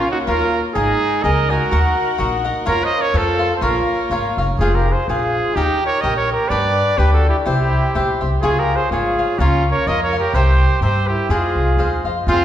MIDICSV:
0, 0, Header, 1, 6, 480
1, 0, Start_track
1, 0, Key_signature, -5, "minor"
1, 0, Tempo, 480000
1, 757, Time_signature, 2, 2, 24, 8
1, 4603, Key_signature, -4, "minor"
1, 12447, End_track
2, 0, Start_track
2, 0, Title_t, "Cavaquinho"
2, 0, Program_c, 0, 24
2, 0, Note_on_c, 0, 65, 65
2, 0, Note_on_c, 0, 70, 77
2, 0, Note_on_c, 0, 73, 77
2, 0, Note_on_c, 0, 77, 74
2, 258, Note_off_c, 0, 65, 0
2, 269, Note_off_c, 0, 73, 0
2, 270, Note_off_c, 0, 70, 0
2, 270, Note_on_c, 0, 65, 55
2, 273, Note_off_c, 0, 77, 0
2, 274, Note_on_c, 0, 70, 57
2, 281, Note_on_c, 0, 73, 60
2, 286, Note_on_c, 0, 77, 64
2, 748, Note_off_c, 0, 65, 0
2, 749, Note_off_c, 0, 70, 0
2, 752, Note_on_c, 0, 68, 70
2, 753, Note_on_c, 0, 70, 73
2, 756, Note_off_c, 0, 73, 0
2, 757, Note_off_c, 0, 77, 0
2, 760, Note_on_c, 0, 75, 66
2, 761, Note_on_c, 0, 80, 77
2, 1228, Note_off_c, 0, 68, 0
2, 1235, Note_off_c, 0, 70, 0
2, 1240, Note_on_c, 0, 68, 56
2, 1241, Note_off_c, 0, 75, 0
2, 1241, Note_off_c, 0, 80, 0
2, 1247, Note_on_c, 0, 70, 53
2, 1251, Note_on_c, 0, 75, 62
2, 1251, Note_on_c, 0, 80, 68
2, 1488, Note_off_c, 0, 80, 0
2, 1499, Note_off_c, 0, 68, 0
2, 1500, Note_on_c, 0, 80, 52
2, 1502, Note_off_c, 0, 75, 0
2, 1503, Note_off_c, 0, 70, 0
2, 1514, Note_on_c, 0, 75, 39
2, 1518, Note_on_c, 0, 70, 40
2, 1709, Note_off_c, 0, 70, 0
2, 1712, Note_on_c, 0, 66, 59
2, 1713, Note_off_c, 0, 75, 0
2, 1717, Note_off_c, 0, 80, 0
2, 1721, Note_on_c, 0, 70, 69
2, 1725, Note_on_c, 0, 75, 72
2, 1726, Note_on_c, 0, 78, 85
2, 2172, Note_off_c, 0, 66, 0
2, 2179, Note_off_c, 0, 70, 0
2, 2184, Note_off_c, 0, 75, 0
2, 2184, Note_on_c, 0, 66, 66
2, 2188, Note_off_c, 0, 78, 0
2, 2191, Note_on_c, 0, 70, 62
2, 2196, Note_on_c, 0, 75, 69
2, 2200, Note_on_c, 0, 78, 67
2, 2434, Note_off_c, 0, 78, 0
2, 2441, Note_off_c, 0, 75, 0
2, 2445, Note_off_c, 0, 66, 0
2, 2445, Note_off_c, 0, 70, 0
2, 2446, Note_on_c, 0, 78, 65
2, 2453, Note_on_c, 0, 75, 49
2, 2457, Note_on_c, 0, 70, 51
2, 2651, Note_off_c, 0, 70, 0
2, 2657, Note_on_c, 0, 65, 75
2, 2662, Note_off_c, 0, 75, 0
2, 2663, Note_on_c, 0, 70, 80
2, 2664, Note_off_c, 0, 78, 0
2, 2666, Note_on_c, 0, 73, 74
2, 2668, Note_on_c, 0, 77, 90
2, 3134, Note_off_c, 0, 65, 0
2, 3138, Note_on_c, 0, 65, 61
2, 3140, Note_off_c, 0, 70, 0
2, 3141, Note_off_c, 0, 73, 0
2, 3144, Note_on_c, 0, 69, 54
2, 3148, Note_on_c, 0, 72, 64
2, 3150, Note_off_c, 0, 77, 0
2, 3154, Note_on_c, 0, 77, 68
2, 3379, Note_off_c, 0, 77, 0
2, 3388, Note_off_c, 0, 72, 0
2, 3391, Note_on_c, 0, 77, 49
2, 3395, Note_off_c, 0, 69, 0
2, 3398, Note_off_c, 0, 65, 0
2, 3400, Note_on_c, 0, 72, 46
2, 3407, Note_on_c, 0, 69, 47
2, 3613, Note_on_c, 0, 65, 63
2, 3614, Note_off_c, 0, 77, 0
2, 3617, Note_off_c, 0, 69, 0
2, 3619, Note_off_c, 0, 72, 0
2, 3621, Note_on_c, 0, 70, 76
2, 3623, Note_on_c, 0, 73, 80
2, 3628, Note_on_c, 0, 77, 82
2, 4095, Note_off_c, 0, 65, 0
2, 4102, Note_off_c, 0, 70, 0
2, 4103, Note_off_c, 0, 73, 0
2, 4107, Note_on_c, 0, 65, 62
2, 4113, Note_off_c, 0, 77, 0
2, 4114, Note_on_c, 0, 70, 57
2, 4115, Note_on_c, 0, 73, 66
2, 4125, Note_on_c, 0, 77, 63
2, 4369, Note_off_c, 0, 77, 0
2, 4376, Note_off_c, 0, 73, 0
2, 4377, Note_off_c, 0, 65, 0
2, 4381, Note_off_c, 0, 70, 0
2, 4381, Note_on_c, 0, 77, 56
2, 4388, Note_on_c, 0, 73, 51
2, 4392, Note_on_c, 0, 70, 46
2, 4604, Note_off_c, 0, 77, 0
2, 4607, Note_off_c, 0, 70, 0
2, 4607, Note_on_c, 0, 65, 70
2, 4608, Note_off_c, 0, 73, 0
2, 4610, Note_on_c, 0, 68, 63
2, 4621, Note_on_c, 0, 72, 70
2, 4621, Note_on_c, 0, 77, 78
2, 5080, Note_off_c, 0, 65, 0
2, 5084, Note_off_c, 0, 68, 0
2, 5086, Note_off_c, 0, 72, 0
2, 5092, Note_on_c, 0, 65, 49
2, 5095, Note_off_c, 0, 77, 0
2, 5096, Note_on_c, 0, 68, 64
2, 5098, Note_on_c, 0, 72, 55
2, 5107, Note_on_c, 0, 77, 61
2, 5562, Note_off_c, 0, 65, 0
2, 5566, Note_off_c, 0, 68, 0
2, 5566, Note_on_c, 0, 67, 63
2, 5567, Note_off_c, 0, 72, 0
2, 5570, Note_on_c, 0, 70, 66
2, 5571, Note_off_c, 0, 77, 0
2, 5573, Note_on_c, 0, 75, 73
2, 5578, Note_on_c, 0, 79, 72
2, 6025, Note_off_c, 0, 70, 0
2, 6027, Note_off_c, 0, 75, 0
2, 6028, Note_off_c, 0, 67, 0
2, 6032, Note_on_c, 0, 67, 54
2, 6037, Note_on_c, 0, 70, 58
2, 6039, Note_on_c, 0, 75, 66
2, 6045, Note_off_c, 0, 79, 0
2, 6049, Note_on_c, 0, 79, 64
2, 6499, Note_off_c, 0, 67, 0
2, 6506, Note_on_c, 0, 62, 68
2, 6507, Note_off_c, 0, 70, 0
2, 6508, Note_off_c, 0, 75, 0
2, 6511, Note_on_c, 0, 67, 69
2, 6512, Note_off_c, 0, 79, 0
2, 6515, Note_on_c, 0, 71, 84
2, 6516, Note_on_c, 0, 74, 87
2, 6967, Note_off_c, 0, 62, 0
2, 6976, Note_off_c, 0, 67, 0
2, 6979, Note_on_c, 0, 62, 56
2, 6983, Note_off_c, 0, 71, 0
2, 6986, Note_off_c, 0, 74, 0
2, 6988, Note_on_c, 0, 67, 64
2, 6995, Note_on_c, 0, 71, 69
2, 6998, Note_on_c, 0, 74, 64
2, 7451, Note_off_c, 0, 67, 0
2, 7452, Note_off_c, 0, 62, 0
2, 7456, Note_on_c, 0, 64, 65
2, 7463, Note_off_c, 0, 71, 0
2, 7463, Note_on_c, 0, 67, 68
2, 7467, Note_off_c, 0, 74, 0
2, 7467, Note_on_c, 0, 72, 86
2, 7471, Note_on_c, 0, 76, 72
2, 7939, Note_off_c, 0, 64, 0
2, 7942, Note_off_c, 0, 67, 0
2, 7948, Note_off_c, 0, 76, 0
2, 7949, Note_off_c, 0, 72, 0
2, 7951, Note_on_c, 0, 64, 52
2, 7954, Note_on_c, 0, 67, 58
2, 7960, Note_on_c, 0, 72, 60
2, 7960, Note_on_c, 0, 76, 61
2, 8195, Note_off_c, 0, 76, 0
2, 8203, Note_off_c, 0, 72, 0
2, 8207, Note_on_c, 0, 76, 55
2, 8209, Note_off_c, 0, 67, 0
2, 8214, Note_off_c, 0, 64, 0
2, 8215, Note_on_c, 0, 72, 38
2, 8221, Note_on_c, 0, 67, 40
2, 8429, Note_on_c, 0, 65, 73
2, 8431, Note_off_c, 0, 67, 0
2, 8433, Note_off_c, 0, 72, 0
2, 8433, Note_off_c, 0, 76, 0
2, 8435, Note_on_c, 0, 68, 76
2, 8437, Note_on_c, 0, 73, 61
2, 8438, Note_on_c, 0, 77, 76
2, 8907, Note_off_c, 0, 65, 0
2, 8909, Note_off_c, 0, 68, 0
2, 8917, Note_off_c, 0, 73, 0
2, 8919, Note_on_c, 0, 65, 50
2, 8921, Note_off_c, 0, 77, 0
2, 8921, Note_on_c, 0, 68, 55
2, 8929, Note_on_c, 0, 73, 60
2, 8937, Note_on_c, 0, 77, 57
2, 9173, Note_off_c, 0, 77, 0
2, 9177, Note_off_c, 0, 73, 0
2, 9179, Note_off_c, 0, 65, 0
2, 9180, Note_off_c, 0, 68, 0
2, 9185, Note_on_c, 0, 77, 49
2, 9189, Note_on_c, 0, 73, 43
2, 9195, Note_on_c, 0, 68, 42
2, 9398, Note_off_c, 0, 73, 0
2, 9399, Note_off_c, 0, 68, 0
2, 9399, Note_off_c, 0, 77, 0
2, 9403, Note_on_c, 0, 65, 68
2, 9405, Note_on_c, 0, 70, 76
2, 9410, Note_on_c, 0, 73, 73
2, 9414, Note_on_c, 0, 77, 82
2, 9860, Note_off_c, 0, 65, 0
2, 9868, Note_off_c, 0, 73, 0
2, 9871, Note_off_c, 0, 70, 0
2, 9872, Note_on_c, 0, 65, 51
2, 9880, Note_off_c, 0, 77, 0
2, 9880, Note_on_c, 0, 73, 61
2, 9883, Note_on_c, 0, 70, 56
2, 9891, Note_on_c, 0, 77, 65
2, 10113, Note_off_c, 0, 77, 0
2, 10123, Note_off_c, 0, 73, 0
2, 10125, Note_on_c, 0, 77, 52
2, 10128, Note_off_c, 0, 70, 0
2, 10129, Note_off_c, 0, 65, 0
2, 10135, Note_on_c, 0, 73, 42
2, 10140, Note_on_c, 0, 70, 47
2, 10333, Note_off_c, 0, 70, 0
2, 10342, Note_off_c, 0, 77, 0
2, 10345, Note_on_c, 0, 70, 72
2, 10346, Note_off_c, 0, 73, 0
2, 10352, Note_on_c, 0, 72, 76
2, 10356, Note_on_c, 0, 76, 78
2, 10360, Note_on_c, 0, 79, 67
2, 10808, Note_off_c, 0, 70, 0
2, 10815, Note_off_c, 0, 76, 0
2, 10820, Note_off_c, 0, 72, 0
2, 10820, Note_on_c, 0, 70, 59
2, 10821, Note_off_c, 0, 79, 0
2, 10824, Note_on_c, 0, 72, 56
2, 10827, Note_on_c, 0, 76, 61
2, 10833, Note_on_c, 0, 79, 63
2, 11296, Note_off_c, 0, 70, 0
2, 11298, Note_off_c, 0, 72, 0
2, 11300, Note_off_c, 0, 76, 0
2, 11302, Note_off_c, 0, 79, 0
2, 11302, Note_on_c, 0, 68, 73
2, 11308, Note_on_c, 0, 72, 72
2, 11310, Note_on_c, 0, 77, 78
2, 11311, Note_on_c, 0, 75, 75
2, 11771, Note_off_c, 0, 68, 0
2, 11776, Note_off_c, 0, 72, 0
2, 11782, Note_off_c, 0, 75, 0
2, 11783, Note_on_c, 0, 68, 46
2, 11787, Note_off_c, 0, 77, 0
2, 11788, Note_on_c, 0, 72, 51
2, 11794, Note_on_c, 0, 75, 57
2, 11798, Note_on_c, 0, 77, 62
2, 12037, Note_off_c, 0, 77, 0
2, 12047, Note_off_c, 0, 68, 0
2, 12047, Note_off_c, 0, 75, 0
2, 12049, Note_on_c, 0, 77, 53
2, 12050, Note_off_c, 0, 72, 0
2, 12059, Note_on_c, 0, 75, 43
2, 12070, Note_on_c, 0, 72, 37
2, 12270, Note_off_c, 0, 77, 0
2, 12275, Note_off_c, 0, 72, 0
2, 12275, Note_off_c, 0, 75, 0
2, 12280, Note_on_c, 0, 65, 73
2, 12282, Note_on_c, 0, 68, 63
2, 12287, Note_on_c, 0, 72, 89
2, 12291, Note_on_c, 0, 77, 79
2, 12447, Note_off_c, 0, 65, 0
2, 12447, Note_off_c, 0, 68, 0
2, 12447, Note_off_c, 0, 72, 0
2, 12447, Note_off_c, 0, 77, 0
2, 12447, End_track
3, 0, Start_track
3, 0, Title_t, "Trumpet"
3, 0, Program_c, 1, 56
3, 112, Note_on_c, 1, 66, 81
3, 184, Note_off_c, 1, 66, 0
3, 268, Note_on_c, 1, 70, 90
3, 617, Note_off_c, 1, 70, 0
3, 744, Note_on_c, 1, 68, 101
3, 1229, Note_on_c, 1, 75, 90
3, 1244, Note_off_c, 1, 68, 0
3, 1501, Note_on_c, 1, 70, 82
3, 1516, Note_off_c, 1, 75, 0
3, 2192, Note_off_c, 1, 70, 0
3, 2682, Note_on_c, 1, 70, 103
3, 2845, Note_on_c, 1, 75, 102
3, 2860, Note_off_c, 1, 70, 0
3, 3016, Note_on_c, 1, 73, 94
3, 3031, Note_off_c, 1, 75, 0
3, 3175, Note_on_c, 1, 69, 97
3, 3190, Note_off_c, 1, 73, 0
3, 3558, Note_off_c, 1, 69, 0
3, 3564, Note_on_c, 1, 72, 56
3, 3630, Note_on_c, 1, 70, 78
3, 3645, Note_off_c, 1, 72, 0
3, 4114, Note_off_c, 1, 70, 0
3, 4595, Note_on_c, 1, 68, 75
3, 4751, Note_on_c, 1, 70, 70
3, 4766, Note_off_c, 1, 68, 0
3, 4926, Note_on_c, 1, 72, 76
3, 4941, Note_off_c, 1, 70, 0
3, 5085, Note_off_c, 1, 72, 0
3, 5092, Note_on_c, 1, 68, 83
3, 5558, Note_on_c, 1, 67, 93
3, 5573, Note_off_c, 1, 68, 0
3, 5817, Note_off_c, 1, 67, 0
3, 5860, Note_on_c, 1, 73, 96
3, 6010, Note_on_c, 1, 75, 86
3, 6024, Note_off_c, 1, 73, 0
3, 6161, Note_off_c, 1, 75, 0
3, 6167, Note_on_c, 1, 73, 91
3, 6318, Note_off_c, 1, 73, 0
3, 6324, Note_on_c, 1, 70, 86
3, 6491, Note_on_c, 1, 74, 106
3, 6506, Note_off_c, 1, 70, 0
3, 6985, Note_on_c, 1, 71, 90
3, 7000, Note_off_c, 1, 74, 0
3, 7128, Note_off_c, 1, 71, 0
3, 7134, Note_on_c, 1, 69, 81
3, 7285, Note_off_c, 1, 69, 0
3, 7291, Note_on_c, 1, 67, 69
3, 7366, Note_off_c, 1, 67, 0
3, 7450, Note_on_c, 1, 67, 77
3, 8165, Note_off_c, 1, 67, 0
3, 8415, Note_on_c, 1, 68, 79
3, 8593, Note_on_c, 1, 70, 75
3, 8608, Note_off_c, 1, 68, 0
3, 8760, Note_on_c, 1, 72, 80
3, 8775, Note_off_c, 1, 70, 0
3, 8910, Note_off_c, 1, 72, 0
3, 8916, Note_on_c, 1, 68, 76
3, 9395, Note_on_c, 1, 65, 91
3, 9410, Note_off_c, 1, 68, 0
3, 9653, Note_off_c, 1, 65, 0
3, 9716, Note_on_c, 1, 73, 95
3, 9875, Note_on_c, 1, 75, 104
3, 9890, Note_off_c, 1, 73, 0
3, 10025, Note_off_c, 1, 75, 0
3, 10031, Note_on_c, 1, 73, 89
3, 10176, Note_off_c, 1, 73, 0
3, 10188, Note_on_c, 1, 70, 90
3, 10349, Note_on_c, 1, 72, 108
3, 10364, Note_off_c, 1, 70, 0
3, 10819, Note_off_c, 1, 72, 0
3, 10827, Note_on_c, 1, 72, 86
3, 11078, Note_on_c, 1, 67, 77
3, 11093, Note_off_c, 1, 72, 0
3, 11302, Note_on_c, 1, 68, 70
3, 11317, Note_off_c, 1, 67, 0
3, 12050, Note_off_c, 1, 68, 0
3, 12286, Note_on_c, 1, 65, 105
3, 12447, Note_off_c, 1, 65, 0
3, 12447, End_track
4, 0, Start_track
4, 0, Title_t, "Trumpet"
4, 0, Program_c, 2, 56
4, 105, Note_on_c, 2, 63, 62
4, 178, Note_off_c, 2, 63, 0
4, 266, Note_on_c, 2, 65, 77
4, 616, Note_off_c, 2, 65, 0
4, 746, Note_on_c, 2, 63, 76
4, 1239, Note_on_c, 2, 70, 87
4, 1254, Note_off_c, 2, 63, 0
4, 1503, Note_on_c, 2, 66, 76
4, 1518, Note_off_c, 2, 70, 0
4, 2192, Note_off_c, 2, 66, 0
4, 2686, Note_on_c, 2, 65, 81
4, 2839, Note_on_c, 2, 72, 71
4, 2854, Note_off_c, 2, 65, 0
4, 2988, Note_on_c, 2, 70, 71
4, 3003, Note_off_c, 2, 72, 0
4, 3161, Note_on_c, 2, 65, 73
4, 3176, Note_off_c, 2, 70, 0
4, 3544, Note_off_c, 2, 65, 0
4, 3550, Note_on_c, 2, 69, 50
4, 3631, Note_on_c, 2, 65, 66
4, 3646, Note_off_c, 2, 69, 0
4, 4115, Note_off_c, 2, 65, 0
4, 4585, Note_on_c, 2, 65, 64
4, 4748, Note_on_c, 2, 67, 60
4, 4763, Note_off_c, 2, 65, 0
4, 4902, Note_on_c, 2, 68, 61
4, 4917, Note_off_c, 2, 67, 0
4, 5053, Note_off_c, 2, 68, 0
4, 5059, Note_on_c, 2, 65, 64
4, 5536, Note_on_c, 2, 63, 80
4, 5551, Note_off_c, 2, 65, 0
4, 5806, Note_off_c, 2, 63, 0
4, 5860, Note_on_c, 2, 70, 68
4, 6013, Note_off_c, 2, 70, 0
4, 6013, Note_on_c, 2, 70, 76
4, 6163, Note_off_c, 2, 70, 0
4, 6169, Note_on_c, 2, 70, 75
4, 6326, Note_off_c, 2, 70, 0
4, 6336, Note_on_c, 2, 67, 75
4, 6484, Note_on_c, 2, 71, 89
4, 6500, Note_off_c, 2, 67, 0
4, 6968, Note_on_c, 2, 67, 69
4, 6983, Note_off_c, 2, 71, 0
4, 7118, Note_off_c, 2, 67, 0
4, 7124, Note_on_c, 2, 66, 59
4, 7276, Note_off_c, 2, 66, 0
4, 7282, Note_on_c, 2, 64, 65
4, 7359, Note_off_c, 2, 64, 0
4, 7456, Note_on_c, 2, 64, 68
4, 8168, Note_off_c, 2, 64, 0
4, 8442, Note_on_c, 2, 65, 75
4, 8590, Note_on_c, 2, 67, 68
4, 8605, Note_off_c, 2, 65, 0
4, 8763, Note_on_c, 2, 68, 62
4, 8778, Note_off_c, 2, 67, 0
4, 8901, Note_off_c, 2, 68, 0
4, 8907, Note_on_c, 2, 65, 62
4, 9388, Note_on_c, 2, 61, 74
4, 9403, Note_off_c, 2, 65, 0
4, 9650, Note_off_c, 2, 61, 0
4, 9703, Note_on_c, 2, 70, 74
4, 9866, Note_off_c, 2, 70, 0
4, 9866, Note_on_c, 2, 70, 72
4, 10024, Note_off_c, 2, 70, 0
4, 10030, Note_on_c, 2, 70, 72
4, 10176, Note_off_c, 2, 70, 0
4, 10194, Note_on_c, 2, 67, 77
4, 10356, Note_off_c, 2, 67, 0
4, 10356, Note_on_c, 2, 67, 85
4, 10822, Note_off_c, 2, 67, 0
4, 10838, Note_on_c, 2, 67, 65
4, 11098, Note_on_c, 2, 64, 61
4, 11113, Note_off_c, 2, 67, 0
4, 11318, Note_on_c, 2, 65, 60
4, 11334, Note_off_c, 2, 64, 0
4, 12058, Note_off_c, 2, 65, 0
4, 12284, Note_on_c, 2, 60, 81
4, 12447, Note_off_c, 2, 60, 0
4, 12447, End_track
5, 0, Start_track
5, 0, Title_t, "Violin section"
5, 0, Program_c, 3, 48
5, 0, Note_on_c, 3, 58, 61
5, 0, Note_on_c, 3, 65, 58
5, 0, Note_on_c, 3, 73, 65
5, 744, Note_off_c, 3, 65, 0
5, 744, Note_off_c, 3, 73, 0
5, 745, Note_on_c, 3, 70, 69
5, 747, Note_off_c, 3, 58, 0
5, 749, Note_on_c, 3, 56, 58
5, 750, Note_on_c, 3, 63, 58
5, 1702, Note_on_c, 3, 78, 66
5, 1703, Note_off_c, 3, 56, 0
5, 2645, Note_off_c, 3, 63, 0
5, 2650, Note_off_c, 3, 78, 0
5, 2658, Note_on_c, 3, 65, 58
5, 2662, Note_on_c, 3, 61, 71
5, 3112, Note_off_c, 3, 70, 0
5, 3130, Note_on_c, 3, 69, 72
5, 3131, Note_on_c, 3, 60, 69
5, 3134, Note_off_c, 3, 61, 0
5, 3589, Note_off_c, 3, 65, 0
5, 3600, Note_on_c, 3, 58, 61
5, 3601, Note_on_c, 3, 65, 59
5, 3603, Note_on_c, 3, 73, 72
5, 3608, Note_off_c, 3, 60, 0
5, 3608, Note_off_c, 3, 69, 0
5, 4584, Note_off_c, 3, 58, 0
5, 4584, Note_off_c, 3, 65, 0
5, 4585, Note_off_c, 3, 73, 0
5, 12264, Note_on_c, 3, 65, 58
5, 12265, Note_on_c, 3, 60, 70
5, 12268, Note_on_c, 3, 68, 81
5, 12447, Note_off_c, 3, 60, 0
5, 12447, Note_off_c, 3, 65, 0
5, 12447, Note_off_c, 3, 68, 0
5, 12447, End_track
6, 0, Start_track
6, 0, Title_t, "Upright bass"
6, 0, Program_c, 4, 32
6, 276, Note_on_c, 4, 39, 74
6, 590, Note_off_c, 4, 39, 0
6, 756, Note_on_c, 4, 32, 83
6, 927, Note_off_c, 4, 32, 0
6, 1238, Note_on_c, 4, 37, 82
6, 1548, Note_off_c, 4, 37, 0
6, 1717, Note_on_c, 4, 39, 84
6, 1884, Note_off_c, 4, 39, 0
6, 2191, Note_on_c, 4, 34, 85
6, 2501, Note_off_c, 4, 34, 0
6, 2668, Note_on_c, 4, 41, 77
6, 2836, Note_off_c, 4, 41, 0
6, 3136, Note_on_c, 4, 41, 83
6, 3447, Note_off_c, 4, 41, 0
6, 3614, Note_on_c, 4, 34, 80
6, 3787, Note_off_c, 4, 34, 0
6, 4098, Note_on_c, 4, 32, 64
6, 4345, Note_off_c, 4, 32, 0
6, 4372, Note_on_c, 4, 29, 72
6, 4577, Note_off_c, 4, 29, 0
6, 4590, Note_on_c, 4, 29, 96
6, 4908, Note_off_c, 4, 29, 0
6, 5078, Note_on_c, 4, 34, 79
6, 5389, Note_off_c, 4, 34, 0
6, 5557, Note_on_c, 4, 39, 89
6, 5866, Note_off_c, 4, 39, 0
6, 6035, Note_on_c, 4, 34, 77
6, 6341, Note_off_c, 4, 34, 0
6, 6502, Note_on_c, 4, 43, 100
6, 6814, Note_off_c, 4, 43, 0
6, 6978, Note_on_c, 4, 38, 85
6, 7293, Note_off_c, 4, 38, 0
6, 7466, Note_on_c, 4, 36, 91
6, 7780, Note_off_c, 4, 36, 0
6, 7954, Note_on_c, 4, 34, 66
6, 8190, Note_off_c, 4, 34, 0
6, 8221, Note_on_c, 4, 36, 63
6, 8418, Note_off_c, 4, 36, 0
6, 8432, Note_on_c, 4, 37, 82
6, 8748, Note_off_c, 4, 37, 0
6, 8910, Note_on_c, 4, 32, 73
6, 9223, Note_off_c, 4, 32, 0
6, 9387, Note_on_c, 4, 37, 101
6, 9698, Note_off_c, 4, 37, 0
6, 9868, Note_on_c, 4, 41, 82
6, 10176, Note_off_c, 4, 41, 0
6, 10335, Note_on_c, 4, 36, 93
6, 10645, Note_off_c, 4, 36, 0
6, 10811, Note_on_c, 4, 43, 85
6, 11123, Note_off_c, 4, 43, 0
6, 11292, Note_on_c, 4, 41, 88
6, 11463, Note_off_c, 4, 41, 0
6, 11554, Note_on_c, 4, 36, 74
6, 11756, Note_off_c, 4, 36, 0
6, 11772, Note_on_c, 4, 39, 70
6, 12015, Note_off_c, 4, 39, 0
6, 12042, Note_on_c, 4, 41, 65
6, 12244, Note_off_c, 4, 41, 0
6, 12267, Note_on_c, 4, 41, 87
6, 12447, Note_off_c, 4, 41, 0
6, 12447, End_track
0, 0, End_of_file